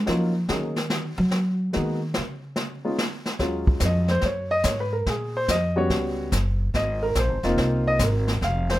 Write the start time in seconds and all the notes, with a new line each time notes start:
0.06 F3 F#3 A#3 C#4 D#4 F4, brush sweep, snare
0.49 D#3 F#3 A#3 C#4 D#4 G#4, snare
0.76 snare
0.90 brush sweep, snare
1.18 F#3
1.31 snare
1.73 D#3 G#3 A#3 B3 D#4 F#4, brush sweep, snare
2.14 C#3, snare
2.56 brush sweep, snare
2.85 G#3 B3 C#4 D#4 F4
2.98 snare
3.26 snare
3.39 D#2 F#3 G#3 C#4 F4, brush sweep, kick, snare
3.67 kick
3.80 F2, kick, snare, hi-hat pedal
3.85 D#5
4.08 C5, snare
4.21 F#2, brush sweep, kick, snare
4.26 C#5
4.51 D#5
4.63 G#2 C#5, kick, snare, hi-hat pedal
4.80 B4
4.93 A#4
5.06 A#2 G#4, brush sweep, kick, snare
5.37 C5
5.48 F2 D#5, kick, snare, hi-hat pedal
5.76 G3 B3 C#4 F#4 C#5
5.90 C#2, brush sweep, kick, snare
6.32 F#1, kick, snare, hi-hat pedal
6.74 G#1 D#5, brush sweep, kick, snare
7.03 A#4
7.15 A#1, kick, snare, hi-hat pedal
7.19 C5
7.29 G#1
7.43 F1 A#3 C4 D#4 F4, snare
7.58 C2, brush sweep, kick, snare
7.87 D#5
7.99 G#1, kick, snare, hi-hat pedal
8.04 A#4
8.28 snare
8.41 F1 F5, brush sweep, kick, snare
8.70 C5, snare